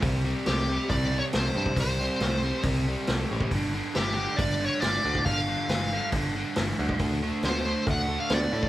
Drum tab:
HH |o---o---o---o---|o---o---o---o---|o---o---o---o---|o---o---o---o---|
SD |----oo------o---|----o-------o---|----o-------o---|----o-------o---|
BD |o-------o------o|o-------o------o|o-------o------o|o-------o------o|

HH |o---o---o---o---|
SD |----o-------o---|
BD |o-------o------o|